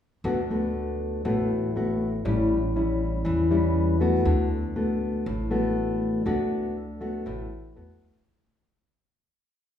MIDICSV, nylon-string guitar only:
0, 0, Header, 1, 2, 480
1, 0, Start_track
1, 0, Key_signature, 2, "major"
1, 0, Tempo, 501253
1, 232, Time_signature, 4, 2, 24, 8
1, 9370, End_track
2, 0, Start_track
2, 0, Title_t, "Nylon-string guitar"
2, 0, Program_c, 0, 24
2, 236, Note_on_c, 0, 50, 57
2, 238, Note_on_c, 0, 57, 53
2, 238, Note_on_c, 0, 59, 53
2, 246, Note_on_c, 0, 66, 61
2, 374, Note_off_c, 0, 57, 0
2, 376, Note_off_c, 0, 59, 0
2, 380, Note_off_c, 0, 66, 0
2, 483, Note_on_c, 0, 57, 55
2, 489, Note_on_c, 0, 59, 54
2, 489, Note_on_c, 0, 66, 56
2, 1159, Note_off_c, 0, 57, 0
2, 1160, Note_off_c, 0, 59, 0
2, 1162, Note_off_c, 0, 66, 0
2, 1170, Note_off_c, 0, 50, 0
2, 1196, Note_on_c, 0, 45, 54
2, 1200, Note_on_c, 0, 57, 50
2, 1201, Note_on_c, 0, 59, 47
2, 1205, Note_on_c, 0, 66, 53
2, 1636, Note_off_c, 0, 57, 0
2, 1638, Note_off_c, 0, 59, 0
2, 1640, Note_off_c, 0, 66, 0
2, 1686, Note_on_c, 0, 57, 51
2, 1692, Note_on_c, 0, 59, 49
2, 1694, Note_on_c, 0, 66, 57
2, 1988, Note_off_c, 0, 57, 0
2, 1989, Note_off_c, 0, 59, 0
2, 1992, Note_off_c, 0, 66, 0
2, 2130, Note_off_c, 0, 45, 0
2, 2155, Note_on_c, 0, 45, 58
2, 2157, Note_on_c, 0, 55, 54
2, 2162, Note_on_c, 0, 61, 59
2, 2162, Note_on_c, 0, 64, 63
2, 2463, Note_off_c, 0, 55, 0
2, 2464, Note_off_c, 0, 61, 0
2, 2466, Note_off_c, 0, 64, 0
2, 2639, Note_on_c, 0, 55, 47
2, 2644, Note_on_c, 0, 61, 50
2, 2649, Note_on_c, 0, 64, 55
2, 3090, Note_off_c, 0, 45, 0
2, 3110, Note_on_c, 0, 52, 55
2, 3317, Note_off_c, 0, 55, 0
2, 3320, Note_off_c, 0, 61, 0
2, 3321, Note_off_c, 0, 64, 0
2, 3356, Note_on_c, 0, 55, 56
2, 3364, Note_on_c, 0, 61, 53
2, 3365, Note_on_c, 0, 64, 61
2, 3797, Note_off_c, 0, 55, 0
2, 3798, Note_off_c, 0, 61, 0
2, 3800, Note_off_c, 0, 64, 0
2, 3834, Note_on_c, 0, 57, 58
2, 3841, Note_on_c, 0, 59, 65
2, 3845, Note_on_c, 0, 66, 65
2, 4047, Note_off_c, 0, 52, 0
2, 4073, Note_on_c, 0, 50, 55
2, 4274, Note_off_c, 0, 57, 0
2, 4278, Note_off_c, 0, 59, 0
2, 4279, Note_off_c, 0, 66, 0
2, 4557, Note_on_c, 0, 57, 49
2, 4559, Note_on_c, 0, 59, 54
2, 4566, Note_on_c, 0, 66, 51
2, 5009, Note_off_c, 0, 50, 0
2, 5032, Note_off_c, 0, 57, 0
2, 5032, Note_off_c, 0, 59, 0
2, 5036, Note_off_c, 0, 66, 0
2, 5039, Note_on_c, 0, 45, 51
2, 5273, Note_on_c, 0, 57, 53
2, 5278, Note_on_c, 0, 59, 53
2, 5283, Note_on_c, 0, 66, 63
2, 5954, Note_off_c, 0, 57, 0
2, 5956, Note_off_c, 0, 59, 0
2, 5959, Note_off_c, 0, 66, 0
2, 5971, Note_off_c, 0, 45, 0
2, 5992, Note_on_c, 0, 50, 55
2, 5993, Note_on_c, 0, 57, 52
2, 5998, Note_on_c, 0, 59, 53
2, 5999, Note_on_c, 0, 66, 57
2, 6469, Note_off_c, 0, 57, 0
2, 6471, Note_off_c, 0, 66, 0
2, 6472, Note_off_c, 0, 59, 0
2, 6711, Note_on_c, 0, 57, 55
2, 6715, Note_on_c, 0, 59, 56
2, 6718, Note_on_c, 0, 66, 59
2, 6928, Note_off_c, 0, 50, 0
2, 6952, Note_on_c, 0, 45, 54
2, 7392, Note_off_c, 0, 57, 0
2, 7395, Note_off_c, 0, 59, 0
2, 7395, Note_off_c, 0, 66, 0
2, 7431, Note_on_c, 0, 57, 51
2, 7434, Note_on_c, 0, 59, 53
2, 7438, Note_on_c, 0, 66, 51
2, 7873, Note_off_c, 0, 57, 0
2, 7873, Note_off_c, 0, 59, 0
2, 7876, Note_off_c, 0, 66, 0
2, 7887, Note_off_c, 0, 45, 0
2, 9370, End_track
0, 0, End_of_file